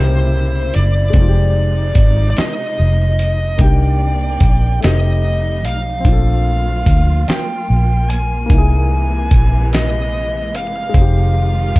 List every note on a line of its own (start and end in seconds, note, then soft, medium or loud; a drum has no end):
0.00 0.71 C2 loud
0.00 1.12 A#2 medium
0.00 1.14 C#3 medium
0.00 1.11 A#3 medium
0.00 1.13 A#3 medium
0.00 1.13 C4 medium
0.00 1.13 E4 medium
0.00 1.15 E4 medium
0.00 1.16 G4 medium
0.00 0.75 C5 medium
0.74 1.12 F#1 medium
0.74 2.29 D5 loud
0.74 closed hi-hat medium
1.10 3.53 G#3 medium
1.10 3.55 C4 medium
1.10 kick loud
1.10 closed hi-hat medium
1.14 1.92 F1 loud
1.14 3.57 C3 medium
1.14 3.57 F3 medium
1.14 3.57 G#3 medium
1.14 3.57 D#4 medium
1.22 1.25 F4 medium
1.28 3.62 G4 medium
1.95 2.33 G#1 medium
1.95 kick loud
1.95 closed hi-hat loud
2.30 2.37 D5 medium
2.37 3.64 D#5 medium
2.37 snare loud
2.37 closed hi-hat medium
2.80 3.56 F1 loud
3.19 closed hi-hat medium
3.58 4.37 C2 loud
3.58 4.81 C3 medium
3.58 4.81 D#3 medium
3.58 4.81 A#3 medium
3.58 4.82 D4 medium
3.58 4.81 D5 medium
3.58 4.79 G5 loud
3.58 kick loud
3.58 closed hi-hat medium
3.62 4.83 D#4 medium
3.62 4.84 G4 medium
4.40 4.78 A#1 medium
4.40 kick loud
4.40 closed hi-hat medium
4.81 5.66 F1 medium
4.81 8.45 F3 medium
4.81 6.03 G3 medium
4.81 6.04 A3 medium
4.81 8.45 A3 medium
4.81 5.99 C4 medium
4.81 6.03 D#4 medium
4.81 5.67 D#5 loud
4.81 snare loud
4.81 closed hi-hat medium
4.85 6.06 D#4 medium
4.85 6.07 G4 medium
5.65 6.02 B1 medium
5.65 7.29 F5 loud
5.65 closed hi-hat medium
6.00 8.43 C4 medium
6.04 6.83 A#1 loud
6.04 10.90 A#3 medium
6.04 8.45 D4 medium
6.04 8.47 F4 medium
6.04 kick loud
6.04 closed hi-hat medium
6.08 8.47 F4 medium
6.12 8.49 A4 medium
6.86 7.24 D2 medium
6.86 kick loud
6.86 closed hi-hat loud
7.28 8.09 G5 loud
7.28 muted fingered electric bass stroke soft
7.28 snare loud
7.28 closed hi-hat medium
7.70 8.46 A#1 medium
8.10 9.77 G#5 loud
8.10 closed hi-hat medium
8.46 10.92 C3 medium
8.46 11.80 G#3 medium
8.46 10.89 A#3 medium
8.46 10.90 D#4 medium
8.46 kick loud
8.50 9.28 C2 loud
8.50 10.92 E3 medium
8.50 closed hi-hat medium
8.58 10.94 G#4 medium
9.31 10.56 A#1 medium
9.31 kick loud
9.31 closed hi-hat medium
9.73 10.56 D#5 loud
9.73 snare loud
9.73 closed hi-hat medium
10.55 10.91 F#1 medium
10.55 11.80 F5 loud
10.55 closed hi-hat medium
10.89 11.80 G#3 medium
10.94 11.72 F1 loud
10.94 11.80 D#3 medium
10.94 11.80 C4 medium
10.94 11.80 D#4 medium
10.94 11.80 F4 medium
10.94 11.80 G4 medium
10.94 kick loud
10.94 closed hi-hat medium
11.02 11.80 G4 medium
11.76 kick loud
11.76 closed hi-hat loud